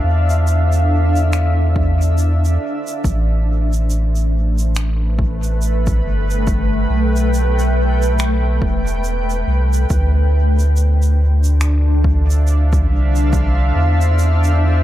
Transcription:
Already playing: D4 A4 C5 E5 F5
0.04 E2
0.30 shaker
0.47 shaker
0.72 shaker
1.16 shaker
1.33 finger snap, shaker
1.76 kick
2.02 shaker
2.18 shaker
2.45 shaker
2.87 shaker
3.04 A1 A3, kick, shaker
3.58 B4
3.73 shaker
3.90 shaker
4.16 shaker
4.59 shaker
4.75 finger snap, shaker
5.15 G5, kick
5.43 shaker
5.62 shaker
5.87 kick, shaker
6.04 G1
6.31 shaker
6.47 kick, shaker
6.90 B1
7.16 shaker
7.34 shaker
7.59 shaker
8.02 shaker
8.19 finger snap, shaker
8.61 E1, kick
8.87 shaker
9.04 shaker
9.30 shaker
9.47 C2
9.73 shaker
9.90 D2 D4, kick, shaker
10.29 C5
10.38 A4
10.59 shaker
10.77 shaker
11.02 E5, shaker
11.32 F5
11.44 shaker
11.61 finger snap, shaker
12.04 kick
12.30 shaker
12.47 shaker
12.73 kick, shaker
12.90 C2
13.16 shaker
13.33 kick, shaker
13.76 E2
14.01 shaker
14.19 shaker
14.44 shaker

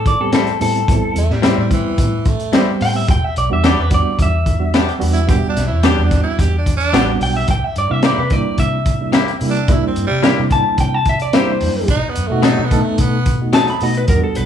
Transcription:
Already playing: A2
0.06 D5, kick, closed hi-hat
0.20 G3 B3 C4 G4 A4
0.32 A2 G3 C4 E4 A4, snare, closed hi-hat
0.47 closed hi-hat
0.60 A2 G3 B3 C4 E4 A4, open hi-hat
0.75 closed hi-hat
0.87 A1 G3 B3 C4 E4, kick, closed hi-hat
1.16 E2 A3, closed hi-hat
1.30 A2 G3, snare
1.42 A2 G3 B3 C4 E4, snare, closed hi-hat
1.58 A2 G3
1.71 E3, kick, closed hi-hat
1.98 A2, kick, closed hi-hat
2.25 A3, kick, closed hi-hat
2.40 closed hi-hat
2.53 A2 G3 B3 C4 E4 G4, snare, closed hi-hat
2.81 A2 G5, open hi-hat
2.96 E5
3.08 E1 G5, kick, closed hi-hat
3.24 E5
3.36 B1 D5, closed hi-hat
3.50 E2 G3 B3 D4 F#4 E5
3.64 E3 B3 D4 G4 D5, snare, closed hi-hat
3.78 E2 B4
3.90 G3 B3 D4 F#4, kick, closed hi-hat
3.94 D5
4.19 E2 E5, kick, closed hi-hat
4.46 kick, closed hi-hat
4.59 G3 B3 D4 F#4
4.74 E3 B3 D4 G4, snare, closed hi-hat
4.89 closed hi-hat
4.99 E2 G3 B3 D4 F#4, open hi-hat
5.13 E4, closed hi-hat
5.27 E1 G3 B3 D4 F#4 G4, kick, closed hi-hat
5.49 D4
5.57 B1, snare, closed hi-hat
5.67 E2 E4
5.83 E3 G3 B3 D4 F#4 G4, snare, closed hi-hat
5.98 E2
6.04 D4
6.11 kick, snare, closed hi-hat
6.23 E4
6.39 E2 G4, kick, closed hi-hat
6.58 D4
6.66 kick, closed hi-hat
6.76 D4, closed hi-hat
6.93 A1 E3 G3 B3 D4 F#4 G4, snare, closed hi-hat
7.21 B1 G5, open hi-hat
7.37 E5
7.48 C2 G5, kick, closed hi-hat
7.64 E5
7.76 G2 D5, closed hi-hat
7.90 C3 G3 A#3 D4 E4 E5
8.03 C3 A#3 E4 G4 D5, snare, closed hi-hat
8.18 C3 B4
8.30 G3 A#3 D4 E4 D5, kick, closed hi-hat
8.58 C3 E5, kick, closed hi-hat
8.86 kick, closed hi-hat
9.01 G3 A#3 D4 E4
9.12 C3 A#3 E4 G4, snare, closed hi-hat
9.28 closed hi-hat
9.41 C3 G3 A#3 D4 E4, open hi-hat
9.50 D4
9.55 closed hi-hat
9.68 C2 G3 A#3 D4 E4, kick, closed hi-hat
9.87 C4
9.96 G2, closed hi-hat
10.07 G3
10.11 C3
10.22 C3 G3 A#3 D4 E4 G4, snare, closed hi-hat
10.39 C3
10.51 A5, kick, closed hi-hat
10.78 C3 G5, kick, closed hi-hat
10.94 A5
11.05 E5, kick, closed hi-hat
11.19 D5, closed hi-hat
11.33 C3 G3 A#3 D4 E4 G4 C5, snare, closed hi-hat
11.61 F#2, open hi-hat
11.88 B1 D#4, kick, closed hi-hat
12.09 B3
12.15 F#2, closed hi-hat
12.27 B2 A3 B3
12.31 D#4 F#4
12.43 B2 F#3 A3 D#4, snare, closed hi-hat
12.59 B2
12.64 B3
12.71 A3 B3 D#4 A4, kick, closed hi-hat
12.82 A3
12.98 B2 B3, kick, closed hi-hat
13.26 kick, closed hi-hat
13.41 A3 B3 D#4 F#4
13.53 B2 F#3 A3 D#4 A5, snare, closed hi-hat
13.68 B5, closed hi-hat
13.80 B2 A3 B3 D#4 F#4 D#5, open hi-hat
13.94 B4, closed hi-hat
14.08 E2 G3 B3 D4 F#4 A#4, kick, closed hi-hat
14.24 A4
14.35 B1 B4, closed hi-hat

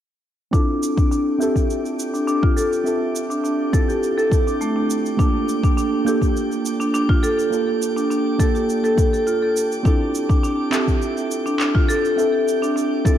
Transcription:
0.51 C4 D4 E4 F4 G4 A4 G5, kick, shaker
0.83 shaker
0.97 D4, kick, shaker
1.11 D4, shaker
1.38 C4 F4 G4 E5, shaker
1.43 A4
1.56 kick, shaker
1.70 shaker
1.86 shaker
1.99 shaker
2.14 D4, shaker
2.27 D4, shaker
2.43 F4, kick
2.56 A4, shaker
2.73 shaker
2.84 C4 F4 A4 E5, shaker
3.16 shaker
3.30 D4, shaker
3.44 D4, shaker
3.73 C4 E4 F4 A4, kick, shaker
3.88 G4, shaker
4.03 shaker
4.18 A4, shaker
4.30 C4 E4 F4 A4, kick, shaker
4.47 D4, shaker
4.61 A3, shaker
4.76 D4
4.90 shaker
5.06 shaker
5.17 A#3 D4 F4 A4, kick, shaker
5.49 shaker
5.63 D4, kick, shaker
5.77 D4, shaker
6.05 A#3 D4 F4 G4 A4, shaker
6.22 kick, shaker
6.37 shaker
6.52 shaker
6.66 shaker
6.80 D4, shaker
6.94 D4, shaker
7.09 F4, kick
7.23 A4, shaker
7.39 shaker
7.50 A#3 D4 F4, shaker
7.54 A4
7.82 shaker
7.96 D4, shaker
8.11 D4, shaker
8.39 A#3 D4 F4 A4, kick, shaker
8.55 G4, shaker
8.69 shaker
8.84 A4, shaker
8.96 A#3 D4 F4, kick, shaker
9.00 A4
9.13 A4, shaker
9.27 F4, shaker
9.42 A4
9.57 shaker
9.72 shaker
9.83 C4 D4 E4 F4, kick, shaker
9.87 A4
10.15 shaker
10.29 D4, kick, shaker
10.43 D4, shaker
10.71 C4 F4 G4 E5, clap, shaker
10.75 A4
10.88 kick, shaker
11.02 shaker
11.17 shaker
11.31 shaker
11.46 D4, shaker
11.59 D4, clap, shaker
11.75 F4, kick
11.89 A4, shaker
12.05 shaker
12.16 C4 F4 E5, shaker
12.20 A4
12.48 shaker
12.62 D4, shaker
12.76 D4, shaker
13.05 C4 E4 F4 A4, kick, shaker

